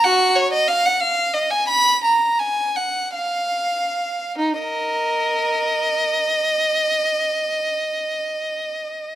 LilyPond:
\new Staff \with { instrumentName = "Violin" } { \time 6/8 \key ees \minor \tempo 4. = 50 << { ges''8 des''16 ees''16 f''16 ges''16 f''8 ees''16 aes''16 ces'''8 | bes''8 aes''8 ges''8 f''4. | ees'16 ees''2~ ees''8.~ | ees''2. | } \\ { ges'8 r2 r8 | r2. | r16 bes'2 r8. | r2. | } >> }